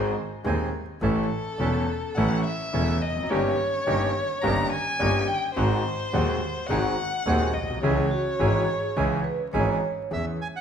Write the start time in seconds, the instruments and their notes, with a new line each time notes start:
Already playing: double bass G#1, grand piano G#1 G#2 D#3 G#3 C4 G#4, bandoneon C4 D#4 G#4, violin C5
0.44 grand piano D#1 D#2 D#3 G#3 C4 G#4, double bass D#2, bandoneon C4 D#4 G#4
1.02 double bass A1, grand piano A1 A2 E3 A3 C#4 A4, bandoneon C#4 E4 A4, violin A4
1.59 double bass E1, grand piano E1 E2 E3 A3 C#4 A4, bandoneon C#4 E4 A4
2.15 double bass A1, grand piano A1 A2 E3 A3 C#4 A4, bandoneon C#4 E4 A4, violin F#5
2.44 violin E5
2.73 grand piano E1 E2 E3 A3 C#4 A4, double bass E1, bandoneon C#4 E4 A4
3.01 double bass F1, violin D#5
3.10 grand piano E2
3.16 grand piano F2
3.23 grand piano F#2
3.30 double bass G1, grand piano G1 G2 D#3 A#3 C#4 G4, bandoneon C#4 D#4 G4, violin C#5
3.86 grand piano G1 G2 D#3 A#3 C#4 G4, double bass G1, bandoneon C#4 D#4 G4
4.41 grand piano G1 G2 D#3 A#3 C#4 G4, double bass G1, bandoneon C#4 D#4 G4, violin A#5
4.70 violin G#5
5.00 grand piano G1 G2 D#3 A#3 C#4 G4, double bass G1, bandoneon C#4 D#4 G4
5.28 violin G5
5.54 grand piano G#1 G#2 D#3 G#3 C4 F#4, double bass G#1, bandoneon C4 F#4 G#4, violin C5
6.13 grand piano D#1 D#2 D#3 G#3 C4 F#4, double bass D#2, bandoneon C4 F#4 G#4
6.67 double bass G#1, grand piano G#1 G#2 D#3 G#3 C4, bandoneon C4 F#4 G#4, violin F#5
6.71 grand piano F#4
7.26 grand piano D#1 D#2 D#3 G#3 C4 F#4, double bass D#2, bandoneon C4 F#4 G#4
7.53 double bass B1, violin D#5
7.63 grand piano A#1
7.70 grand piano B1
7.76 grand piano C2
7.81 grand piano C#2 C#3 E3 G#3 C#4 G#4, double bass C#2, bandoneon C#4 E4 G#4, violin C#5
8.11 vibraphone F#4
8.39 grand piano G#1 G#2 E3 G#3 C#4 G#4, double bass G#1, bandoneon C#4 E4 G#4
8.68 vibraphone G#4
8.96 double bass C#2, grand piano C#2 C#3 E3 G#3 C#4 G#4, bandoneon C#4 E4 G#4, vibraphone G#4
9.24 vibraphone B4
9.53 double bass G#1, grand piano G#1 G#2 E3 G#3 C#4 G#4, bandoneon C#4 E4 G#4, vibraphone C#5
10.11 grand piano E2 E3 B3 C#4 G#4, double bass E2, bandoneon E5
10.41 bandoneon G#5
10.56 bandoneon F#5